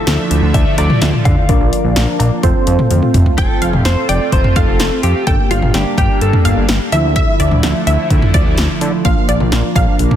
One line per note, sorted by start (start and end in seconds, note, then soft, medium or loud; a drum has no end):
0.00 1.47 D3 medium
0.00 2.40 F3 medium
0.00 1.47 A3 medium
0.00 1.45 E4 medium
0.00 1.45 F4 medium
0.00 0.57 A4 medium
0.00 1.45 A4 medium
0.00 1.45 D5 medium
0.00 1.47 E5 medium
0.07 0.18 D2 loud
0.07 snare loud
0.07 closed hi-hat medium
0.31 0.42 D2 loud
0.31 closed hi-hat medium
0.43 0.53 D2 loud
0.54 0.65 D2 loud
0.54 0.76 E5 loud
0.54 kick medium
0.54 closed hi-hat medium
0.78 0.89 D2 loud
0.78 1.01 D5 loud
0.78 closed hi-hat medium
0.78 cowbell medium
0.90 mid tom loud
1.02 1.12 D2 loud
1.02 1.08 E5 loud
1.02 snare loud
1.02 closed hi-hat medium
1.13 mid tom medium
1.25 1.36 D3 loud
1.25 3.10 F5 loud
1.25 kick loud
1.25 closed hi-hat medium
1.25 mid tom loud
1.49 1.60 A#1 loud
1.49 2.42 A#3 medium
1.49 2.43 D4 medium
1.49 2.42 D4 medium
1.49 2.42 F4 medium
1.49 2.42 A#4 medium
1.49 2.42 D5 medium
1.49 kick loud
1.49 closed hi-hat medium
1.61 1.71 A#1 loud
1.73 closed hi-hat medium
1.84 1.95 A#1 medium
1.96 2.07 A#1 loud
1.96 snare loud
1.96 closed hi-hat medium
2.20 2.31 A#1 loud
2.20 closed hi-hat medium
2.20 cowbell medium
2.43 2.54 F1 loud
2.43 3.37 A3 medium
2.43 3.36 C4 medium
2.43 3.37 C4 medium
2.43 3.36 F4 medium
2.43 3.37 F4 medium
2.43 3.36 A4 medium
2.43 3.36 C5 medium
2.43 kick medium
2.43 closed hi-hat medium
2.67 2.78 F2 loud
2.67 closed hi-hat medium
2.79 mid tom medium
2.91 3.01 F2 loud
2.91 closed hi-hat medium
2.91 high tom medium
3.02 mid tom medium
3.14 3.25 F1 loud
3.14 closed hi-hat medium
3.14 mid tom loud
3.26 floor tom loud
3.38 3.49 F1 loud
3.38 5.25 A3 medium
3.38 5.23 C4 medium
3.38 5.25 C4 medium
3.38 5.25 F4 medium
3.38 5.23 A4 medium
3.38 3.85 A4 loud
3.38 3.56 G5 loud
3.38 kick loud
3.38 closed hi-hat medium
3.62 3.72 F1 loud
3.62 3.95 F5 medium
3.62 closed hi-hat medium
3.73 3.84 F1 loud
3.73 mid tom medium
3.85 3.96 F1 loud
3.85 4.09 C5 loud
3.85 snare loud
3.85 closed hi-hat medium
4.09 4.20 F1 loud
4.09 4.32 D5 loud
4.09 4.18 G5 medium
4.09 closed hi-hat medium
4.32 4.43 F1 loud
4.32 4.57 C5 loud
4.32 kick medium
4.32 closed hi-hat medium
4.44 mid tom loud
4.56 4.67 F1 loud
4.56 5.00 A4 loud
4.56 4.65 F5 medium
4.56 kick loud
4.56 closed hi-hat medium
4.68 4.79 F1 loud
4.80 4.90 F1 loud
4.80 snare loud
4.80 closed hi-hat medium
5.03 5.14 F2 loud
5.03 5.27 G4 medium
5.03 closed hi-hat medium
5.27 5.38 G1 loud
5.27 6.91 G3 medium
5.27 6.89 A#3 medium
5.27 6.91 A#3 medium
5.27 6.89 D4 medium
5.27 6.91 D4 medium
5.27 6.89 G4 medium
5.27 5.34 A4 loud
5.27 5.45 G5 loud
5.27 kick loud
5.27 closed hi-hat medium
5.51 5.61 G1 medium
5.51 5.75 F4 medium
5.51 5.84 F5 medium
5.51 closed hi-hat medium
5.62 5.73 G1 medium
5.62 mid tom medium
5.74 5.85 G1 loud
5.74 5.97 G4 medium
5.74 snare loud
5.74 closed hi-hat medium
5.98 6.08 G1 loud
5.98 6.21 G4 medium
5.98 6.07 G5 medium
5.98 kick medium
5.98 closed hi-hat medium
6.21 6.32 G1 loud
6.21 6.65 A4 medium
6.21 closed hi-hat medium
6.33 mid tom loud
6.45 6.56 G1 loud
6.45 6.54 F5 medium
6.45 closed hi-hat medium
6.57 6.68 G1 loud
6.69 6.79 G1 loud
6.69 snare loud
6.69 closed hi-hat medium
6.92 7.25 D2 loud
6.92 9.03 D3 medium
6.92 9.01 F3 medium
6.92 10.16 F3 medium
6.92 9.03 A3 medium
6.92 9.01 D4 medium
6.92 9.01 E4 medium
6.92 9.03 E4 medium
6.92 7.01 E5 medium
6.92 closed hi-hat medium
7.16 7.34 E5 loud
7.16 kick loud
7.16 closed hi-hat medium
7.40 7.50 D2 loud
7.40 7.73 D5 medium
7.40 closed hi-hat medium
7.51 7.62 D2 loud
7.51 mid tom medium
7.63 7.74 D2 loud
7.63 snare loud
7.63 closed hi-hat medium
7.87 7.98 D2 loud
7.87 7.96 E5 medium
7.87 closed hi-hat medium
8.10 8.21 D2 loud
8.10 kick medium
8.10 closed hi-hat medium
8.22 mid tom medium
8.34 8.45 D2 loud
8.34 8.43 D5 medium
8.34 kick loud
8.34 closed hi-hat medium
8.46 8.57 D2 medium
8.58 8.68 D2 loud
8.58 snare loud
8.58 closed hi-hat medium
8.81 8.92 D3 loud
8.81 closed hi-hat medium
9.05 9.16 A#1 loud
9.05 10.16 A#3 medium
9.05 10.16 D4 medium
9.05 10.16 F4 medium
9.05 9.23 F5 loud
9.05 kick loud
9.05 closed hi-hat medium
9.29 9.39 A#1 loud
9.29 9.62 D5 medium
9.29 closed hi-hat medium
9.40 9.51 A#1 loud
9.40 mid tom medium
9.52 9.63 A#1 loud
9.52 snare loud
9.52 closed hi-hat medium
9.76 9.86 A#1 loud
9.76 9.85 F5 medium
9.76 kick medium
9.76 closed hi-hat medium
9.99 10.10 A#1 loud
9.99 closed hi-hat medium
10.11 mid tom loud